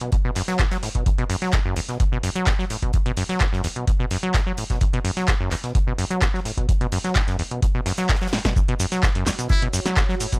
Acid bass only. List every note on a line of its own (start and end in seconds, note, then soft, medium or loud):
0.01 0.10 B2 medium
0.12 0.16 B2 medium
0.25 0.31 B2 loud
0.36 0.43 F#2 loud
0.48 0.61 F#3 loud
0.59 0.66 F#2 loud
0.71 0.78 F#3 loud
0.83 0.89 A2 medium
0.95 1.04 B2 medium
1.06 1.10 F#2 medium
1.18 1.25 B2 loud
1.30 1.36 F#2 loud
1.42 1.55 F#3 loud
1.53 1.60 F#2 loud
1.65 1.75 F#2 loud
1.76 1.81 E2 loud
1.89 1.98 B2 medium
2.00 2.04 B2 medium
2.12 2.18 B2 loud
2.23 2.30 F#2 loud
2.36 2.48 F#3 loud
2.47 2.54 F#2 loud
2.59 2.65 F#3 medium
2.70 2.77 A2 medium
2.82 2.92 B2 medium
2.94 2.98 F#2 medium
3.06 3.12 B2 loud
3.17 3.24 F#2 loud
3.29 3.42 F#3 loud
3.41 3.47 F#2 loud
3.53 3.62 F#2 loud
3.64 3.68 E2 loud
3.76 3.85 B2 medium
4.00 4.06 B2 loud
4.11 4.18 F#2 loud
4.23 4.36 F#3 loud
4.34 4.41 F#2 loud
4.46 4.53 F#3 loud
4.58 4.64 A2 medium
4.70 4.79 B2 medium
4.81 4.85 F#2 medium
4.93 5.00 B2 loud
5.05 5.11 F#2 loud
5.17 5.29 F#3 loud
5.28 5.35 F#2 loud
5.40 5.50 F#2 loud
5.51 5.55 E2 loud
5.64 5.73 B2 medium
5.75 5.79 B2 medium
5.87 5.93 B2 loud
5.98 6.05 F#2 loud
6.11 6.23 F#3 loud
6.22 6.29 F#2 loud
6.34 6.40 F#3 loud
6.45 6.52 A2 medium
6.57 6.67 B2 medium
6.69 6.73 F#2 medium
6.81 6.87 B2 loud
6.92 6.99 F#2 loud
7.04 7.17 F#3 loud
7.16 7.22 F#2 loud
7.28 7.37 F#2 loud
7.39 7.43 E2 loud
7.51 7.60 B2 medium
7.62 7.66 B2 medium
7.75 7.81 B2 loud
7.86 7.93 F#2 loud
7.98 8.11 F#3 loud
8.09 8.16 F#2 loud
8.21 8.28 F#3 loud
8.33 8.39 A2 medium
8.45 8.54 B2 medium
8.56 8.60 F#2 medium
8.68 8.75 B2 loud
8.80 8.86 F#2 loud
8.92 9.05 F#3 loud
9.03 9.10 F#2 loud
9.15 9.25 F#2 loud
9.26 9.31 E2 loud
9.39 9.48 B2 medium
9.50 9.54 B2 medium
9.62 9.68 B2 loud
9.73 9.80 F#2 loud
9.86 9.98 F#3 loud
9.97 10.04 F#2 loud
10.09 10.15 F#3 loud
10.20 10.27 A2 medium
10.32 10.39 B2 medium